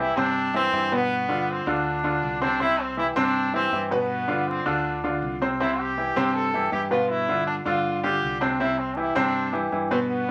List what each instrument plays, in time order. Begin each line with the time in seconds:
Already playing: fingered electric bass C2, grand piano E3
0.00 grand piano E4 G4, trombone E4
0.16 fingered electric bass G2, grand piano C3 C4 C5, trombone D4
0.54 grand piano E3 E4 G4, trombone C4
0.72 fingered electric bass G2, grand piano E3 E4 G4
0.92 grand piano B2 B3 B4, trombone B3
1.29 grand piano D3 D4 F4
1.50 trombone C4
1.66 fingered electric bass D2, grand piano D3 D4 F4, trombone D4
2.04 grand piano D3 D4 F4
2.22 fingered electric bass C2
2.41 grand piano C3 C4 C5, trombone D4
2.60 grand piano C3 C4 C5, trombone E4
2.81 trombone C4
2.97 grand piano E3 E4 G4, trombone E4
3.16 fingered electric bass G2, grand piano C3 C4 C5, trombone D4
3.54 grand piano E3 E4 G4, trombone C4
3.72 fingered electric bass G2, grand piano E3 E4 G4
3.84 trombone C4
3.91 grand piano B2 B3 B4, trombone B3
4.28 grand piano D3 D4 F4
4.49 trombone C4
4.66 fingered electric bass D2, grand piano D3 D4 F4, trombone D4
5.04 grand piano D3 D4 F4
5.22 fingered electric bass C2
5.41 grand piano C3 C4 C5
5.60 grand piano C3 C4 C5, trombone E4
5.80 trombone G4
5.97 grand piano E3 E4 G4
6.16 fingered electric bass G2, grand piano C3 C4 C5
6.35 trombone A4
6.54 grand piano E3 E4 G4
6.72 fingered electric bass G2, grand piano E3 E4 G4, trombone G4
6.91 grand piano B2 B3 B4, trombone F4
7.10 trombone E4
7.29 grand piano D3 D4 F4
7.47 trombone D4
7.66 fingered electric bass G2, grand piano D3 D4 F4, trombone F4
8.03 grand piano D3 D4 F4, trombone G4
8.22 fingered electric bass C2
8.41 grand piano C3 C4 C5, trombone D4
8.60 grand piano C3 C4 C5, trombone E4
8.79 trombone C4
8.97 grand piano E3 E4 G4, trombone E4
9.15 fingered electric bass G2, grand piano C3 C4 C5, trombone D4
9.53 grand piano E3 E4 G4
9.72 fingered electric bass G2, grand piano E3 E4 G4
9.91 grand piano B2 B3 B4, trombone C4
10.10 trombone B3